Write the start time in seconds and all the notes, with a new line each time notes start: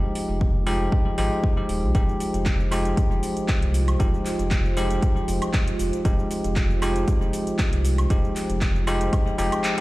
Already playing: F3 G#3 D#4 F4 G4 C5
0.15 open hi-hat
0.29 F1
0.41 kick
0.66 F3 G#3 D#4 G4, open hi-hat
0.92 kick
1.18 G#1 F3 G#3 D#4 G4, open hi-hat
1.44 kick
1.57 F3 G#3 D#4 G4
1.69 D#1, open hi-hat
1.83 C2
1.94 F1 F3 G#3 D#4 G4, kick, closed hi-hat, shaker
2.09 shaker
2.20 open hi-hat, shaker
2.34 F1, closed hi-hat, shaker
2.46 kick, clap, closed hi-hat, shaker
2.60 shaker
2.71 F3 G#3 D#4 G4, open hi-hat, high woodblock, shaker
2.85 closed hi-hat, shaker
2.97 kick, closed hi-hat, shaker
3.11 F1, shaker
3.23 open hi-hat, shaker
3.37 closed hi-hat, shaker
3.48 kick, clap, closed hi-hat, shaker
3.62 C2, closed hi-hat, shaker
3.74 open hi-hat, shaker
3.88 closed hi-hat, high woodblock, shaker
4.00 F1 F3 G#3 D#4 G4, kick, closed hi-hat, shaker
4.14 shaker
4.25 clap, open hi-hat, shaker
4.39 F1, closed hi-hat, shaker
4.51 kick, clap, closed hi-hat, shaker
4.65 shaker
4.77 F3 G#3 D#4 G4, open hi-hat, shaker
4.90 closed hi-hat, shaker
5.02 kick, closed hi-hat, shaker
5.17 shaker
5.28 F1, open hi-hat, shaker
5.42 closed hi-hat, high woodblock, shaker
5.54 kick, clap, closed hi-hat, shaker
5.68 closed hi-hat, shaker
5.79 F1, open hi-hat, shaker
5.93 closed hi-hat, shaker
6.05 F1 F3 G#3 D#4 G4, kick, closed hi-hat, shaker
6.19 shaker
6.31 open hi-hat, shaker
6.44 F1, closed hi-hat, shaker
6.56 kick, clap, closed hi-hat, shaker
6.71 shaker
6.82 F3 G#3 D#4 G4, open hi-hat, high woodblock, shaker
6.96 closed hi-hat, shaker
7.08 kick, closed hi-hat, shaker
7.21 F1, shaker
7.33 open hi-hat, shaker
7.47 closed hi-hat, shaker
7.59 kick, clap, closed hi-hat, shaker
7.73 C2, closed hi-hat, shaker
7.85 open hi-hat, shaker
7.98 closed hi-hat, high woodblock, shaker
8.10 F1 F3 G#3 D#4 G4, kick, closed hi-hat, shaker
8.24 shaker
8.36 clap, open hi-hat, shaker
8.50 F1, closed hi-hat, shaker
8.61 kick, clap, closed hi-hat, shaker
8.76 shaker
8.87 F3 G#3 D#4 G4, open hi-hat, high woodblock, shaker
9.01 closed hi-hat, shaker
9.13 kick, closed hi-hat, high woodblock, shaker
9.27 shaker
9.38 F1 F3 G#3 D#4 G4, open hi-hat, shaker
9.52 closed hi-hat, high woodblock, shaker
9.64 clap, closed hi-hat, shaker